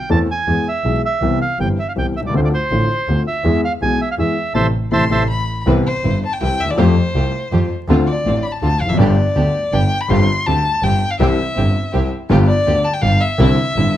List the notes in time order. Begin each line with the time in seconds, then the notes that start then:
0.10 E2 E3 A3 C4 A4 A5
0.31 G#5
0.47 E2 E3 G#3 B3 G#4
0.68 E5
0.84 B1 B2 E3 G#3 B3 G#4
1.05 E5
1.21 C2 C3 E3 B3 C4 G4
1.42 F5
1.59 G1 G2 E3 B3 C4 G4 G5
1.79 E5
1.89 F5
1.96 C2 C3 E3 B3 C4 G4 G5
2.15 C2 E5
2.20 B1
2.25 C2 D5
2.29 C#2
2.34 D2 D3 A3 C4 F4 C5
2.45 D5
2.54 C5
2.71 A1 A2 D3 A3 C4 F4
3.08 D2 D3 A3 C4 F4
3.27 E5
3.44 E2 E3 G#3 B3 G#4
3.65 F5
3.81 B1 B2 E3 G#3 B3 G#4 G#5
4.01 E5
4.11 F5
4.18 E2 E3 G#3 B3 G#4 E5
4.54 A1 C3 E3 A3 C5 E5 A5
4.91 A1 C3 E3 A3 C5 E5 A5 C6
5.10 A1 C3 E3 A3 C5 E5 A5
5.30 B5
5.66 C2 C3 E3 B3 C4 E4 G4 B4
5.86 C5
6.04 G1 G2 C4 E4 B4
6.26 A5
6.33 G5
6.40 C2 C3 C4 E4 B4 G5
6.60 D#2 E5
6.64 D2
6.68 D#2 D5
6.74 E2 F2 F3 A3 C4 F4 G4
6.79 G4 C5
7.15 C2 C3 A3 F4 G4
7.52 F2 F3 A3 F4 G4
7.88 D2 D3 A3 C4 D4 F4
8.07 D5
8.25 A1 A2 C4 D4 F4
8.43 B5
8.52 A5
8.62 D2 D3 C4 D4 F4 A5
8.80 F1 F5
8.86 E2 F2 E5
8.94 F#2 D5
8.98 G1 G2 D3 G3 B3 D4 G4
9.35 D2 D3 B3 D4 G4
9.72 G1 G2 B3 D4 G4 G5
10.01 B5
10.09 G1 G2 D3 G3 C4 F4 G4 C6
10.47 D2 D3 C4 F4 G4 A5
10.83 G1 G2 C4 F4 G4 G5
11.11 F5
11.20 C2 C3 E3 G3 C4 E4 G4 E5
11.56 G1 G2 C4 E4 G4
11.93 C2 C3 C4 E4 G4
12.30 G1 G2 D3 G3 B3 F4 G4
12.48 D5
12.66 D2 D3 B3 F4 G4
12.85 A5
12.94 G5
13.02 G1 G2 B3 F4 G4 F5
13.21 E5
13.39 C2 C3 D3 G3 C4 D4 E4
13.76 G1 G2 C4 D4 E4